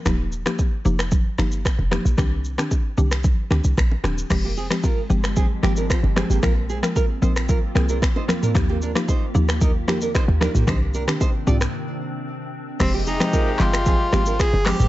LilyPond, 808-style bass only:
\new Staff \with { instrumentName = "808-style bass" } { \clef bass \time 4/4 \key f \dorian \tempo 4 = 113 ees,,4 r8 f,,4 g,,8. f,,8 bes,,16 | c,4 r8 c,4 d,16 c,16 bes,,8 ees,,8 | f,,4 r8 g,,4 aes,,8. g,,8 aes,,16 | bes,,4 r8 bes,,4 c,8. r8. |
ees,4 r8 ees,4 f,8. ees,8 bes,,16 | c,4 r8 c,8 r2 | f,,4 r8 g,,4 aes,,8. g,,8 aes,,16 | }